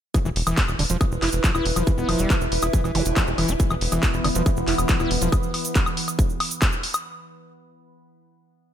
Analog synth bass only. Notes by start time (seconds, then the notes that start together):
0.25 E1
0.36 E1
0.47 E1
0.68 E1
0.79 E1
0.90 E1
1.12 E1
1.22 F1
1.33 E1
1.55 E1
1.66 E1
1.76 E1
1.98 E1
2.09 E1
2.19 E1
2.41 E1
2.52 E1
2.63 E1
2.84 E1
2.95 F1
3.06 E1
3.27 E1
3.38 E1
3.49 E1
3.71 E1
3.81 E1
3.92 E1
4.14 E1
4.25 E1
4.35 E1
4.57 E1
4.68 F1
4.78 E1
5.00 E1
5.11 E1
5.22 E1